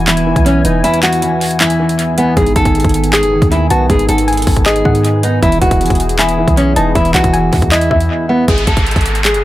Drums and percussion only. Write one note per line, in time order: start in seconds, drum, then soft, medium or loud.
0.07 clap loud
0.07 closed hi-hat medium
0.17 closed hi-hat medium
0.36 kick loud
0.36 closed hi-hat medium
0.46 closed hi-hat medium
0.65 closed hi-hat medium
0.84 closed hi-hat medium
0.94 closed hi-hat medium
1.03 clap loud
1.03 closed hi-hat medium
1.13 closed hi-hat medium
1.22 closed hi-hat medium
1.41 open hi-hat medium
1.51 closed hi-hat medium
1.60 clap loud
1.60 closed hi-hat medium
1.70 closed hi-hat medium
1.89 closed hi-hat medium
1.99 closed hi-hat medium
2.18 closed hi-hat medium
2.37 kick loud
2.37 closed hi-hat medium
2.46 closed hi-hat medium
2.56 kick medium
2.56 closed hi-hat medium
2.65 kick loud
2.65 closed hi-hat medium
2.75 closed hi-hat medium
2.80 closed hi-hat medium
2.85 kick loud
2.85 closed hi-hat medium
2.89 closed hi-hat medium
2.94 closed hi-hat medium
3.04 closed hi-hat medium
3.13 clap loud
3.13 closed hi-hat medium
3.23 closed hi-hat medium
3.42 kick loud
3.42 closed hi-hat medium
3.52 closed hi-hat medium
3.70 closed hi-hat medium
3.90 kick loud
3.90 closed hi-hat medium
3.99 closed hi-hat medium
4.09 closed hi-hat medium
4.18 closed hi-hat medium
4.28 closed hi-hat medium
4.33 closed hi-hat medium
4.37 closed hi-hat medium
4.42 closed hi-hat medium
4.47 kick loud
4.47 open hi-hat medium
4.56 kick medium
4.56 closed hi-hat medium
4.66 clap loud
4.66 closed hi-hat medium
4.76 closed hi-hat medium
4.85 kick medium
4.95 closed hi-hat medium
5.05 closed hi-hat medium
5.23 closed hi-hat medium
5.43 kick loud
5.43 closed hi-hat medium
5.52 closed hi-hat medium
5.62 kick medium
5.62 closed hi-hat medium
5.71 kick loud
5.71 closed hi-hat medium
5.81 closed hi-hat medium
5.86 closed hi-hat medium
5.90 kick medium
5.90 closed hi-hat medium
5.95 closed hi-hat medium
6.00 closed hi-hat medium
6.09 closed hi-hat medium
6.19 clap loud
6.19 closed hi-hat medium
6.29 closed hi-hat medium
6.48 kick loud
6.48 closed hi-hat medium
6.57 closed hi-hat medium
6.76 closed hi-hat medium
6.95 kick loud
6.95 closed hi-hat medium
7.05 closed hi-hat medium
7.14 clap loud
7.14 closed hi-hat medium
7.24 kick loud
7.24 closed hi-hat medium
7.34 closed hi-hat medium
7.53 kick medium
7.53 open hi-hat medium
7.62 kick medium
7.62 closed hi-hat medium
7.72 clap loud
7.72 closed hi-hat medium
7.81 closed hi-hat medium
7.91 kick medium
8.00 closed hi-hat medium
8.48 kick loud
8.48 closed hi-hat medium
8.58 closed hi-hat medium
8.67 kick medium
8.67 closed hi-hat medium
8.77 kick loud
8.77 closed hi-hat medium
8.87 closed hi-hat medium
8.91 closed hi-hat medium
8.96 kick medium
8.96 closed hi-hat medium
9.01 closed hi-hat medium
9.06 closed hi-hat medium
9.15 closed hi-hat medium
9.25 clap loud
9.25 closed hi-hat medium
9.34 closed hi-hat medium